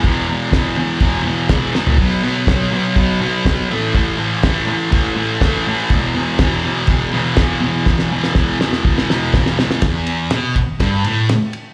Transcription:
<<
  \new Staff \with { instrumentName = "Distorted electric guitar" } { \clef bass \time 4/4 \key a \lydian \tempo 4 = 123 <e, b, e>8 <e, b, e>8 <e, b, e>8 <e, b, e>8 <e, b, e>8 <e, b, e>8 <e, b, e>8 <e, b, e>8 | <b, fis b>8 <b, fis b>8 <b, fis b>8 <b, fis b>8 <b, fis b>8 <b, fis b>8 <b, fis b>8 <a, e a>8 | <a, e a>8 <a, e a>8 <a, e a>8 <a, e a>8 <a, e a>8 <a, e a>8 <a, e a>8 <a, e a>8 | <e, b, e>8 <e, b, e>8 <e, b, e>8 <e, b, e>8 <e, b, e>8 <e, b, e>8 <e, b, e>8 <e, b, e>8 |
<e, b, e>8 <e, b, e>8 <e, b, e>8 <e, b, e>8 <e, b, e>8 <e, b, e>8 <e, b, e>8 <e, b, e>8 | e,4 b,8 r8 g,8 a,8 r4 | }
  \new DrumStaff \with { instrumentName = "Drums" } \drummode { \time 4/4 <cymc bd>4 <cymc bd sn>4 <cymc bd>4 <cymc bd sn>8 sn16 tomfh16 | <cymc bd>4 <cymc bd sn>4 <cymc bd>4 <cymc bd sn>4 | <cymc bd>4 <cymc bd sn>4 <cymc bd>4 <cymc bd sn>4 | <cymc bd>4 <cymc bd sn>4 <cymc bd>4 <cymc bd sn>4 |
<bd sn>16 sn8 sn16 <bd sn>8 sn16 sn16 bd16 sn16 sn8 <bd sn>16 sn16 sn16 sn16 | <bd cymr sn>8 cymr8 <cymr sn>8 <bd cymr>8 <bd cymr sn>8 cymr8 <cymr sn>8 cymr8 | }
>>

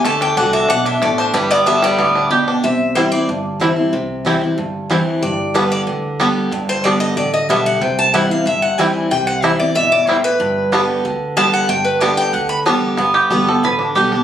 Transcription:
<<
  \new Staff \with { instrumentName = "Steel-string acoustic guitar" } { \time 4/4 \key g \major \tempo 4 = 186 a''8 g''8 fis''8 e''8 fis''8 e''8 d''8 c''8 | b'8 d''8 e''8 d''4. r4 | e''4 c''8 d''8 r2 | r1 |
d''4 b'8 d''8 r2 | r8 c''8 d''8 ees''8 d''8 ees''8 e''8 fis''8 | g''8 a''8 fis''8 f''8 e''8 fis''8 g''8 aes''8 | g''8 fis''8 e''8 d''8 e''8 d''8 c''8 b'8~ |
b'2 r4 a''8 fis''8 | g''8 b'8 d''8 g''8 fis''8 b''8 r4 | r1 | }
  \new Staff \with { instrumentName = "Five-string banjo" } { \time 4/4 \key g \major << { r1 | r1 | r4 <g c' e'>8 r4. <g c' e'>8 r8 | r4 <g c' e'>8 r4. <g c' e'>8 r8 |
r4 <g b d'>8 r4. <g b d'>8 r8 | r4 <g b d'>8 r4. <g b d'>8 r8 | r4 <g c' e'>8 r4. <g c' e'>8 r8 | r4 <g c' e'>8 r4. <g c' e'>8 r8 |
r4 <g b d'>8 r4. <g b d'>8 r8 | r4 <g b d'>8 r4. <g b d'>8 r8 | r4. a'8 b'2 | } \\ { a8 d'8 d'8 d'8 d'8 d'8 a8 d'8 | g8 b8 d'8 g8 b8 d'8 g'8 d'8 | r1 | r1 |
r1 | r1 | r1 | r1 |
r1 | r1 | b8 g'8 b4. d'8 g'8 d'8 | } >> }
  \new Staff \with { instrumentName = "Steel-string acoustic guitar" } { \clef bass \time 4/4 \key g \major << { r4 <d a d' fis'>4 r2 | r4 <d g b g'>4 r2 | r4 <e g c' e'>8 <c' e'>8 r4 <e g c' e'>8 <c' e'>8 | r4 <e g c' e'>8 <c' e'>8 r4 <e g c' e'>4 |
r4 <d g b g'>4 r4 <d g b g'>4 | r4 <d g b g'>4 r4 <d g b g'>4 | r4 <e g c' e'>8 <c' e'>8 r4 <e g c' e'>4 | r4 <e g c' e'>8 <c' e'>8 r2 |
r4 <d g b g'>4 r4 <d g b g'>4 | r4 <d g b g'>4 r4 <d g b g'>4 | r4 <d g b g'>8 <b g'>8 r4 <d g b g'>8 <b g'>8 | } \\ { d2 b,4 a,4 | g,2 a,4 b,4 | c2 g,2 | c2 g,2 |
g,2 d2 | g,2 d2 | c2 g,2 | c2 b,4 a,4 |
g,2 d2 | g,2 d2 | g,2 d2 | } >> }
  \new Staff \with { instrumentName = "Upright bass" } { \clef bass \time 4/4 \key g \major d,4 c,4 b,,4 a,,4 | g,,2 d,2 | c,2 g,,2 | c,2 g,,2 |
g,,2 d,2 | g,,2 a,,4 b,,4 | c,2 g,,2 | c,2 g,,2 |
g,,2 d,2 | g,,2 d,2 | g,,4 g,,4 a,,4 b,,4 | }
>>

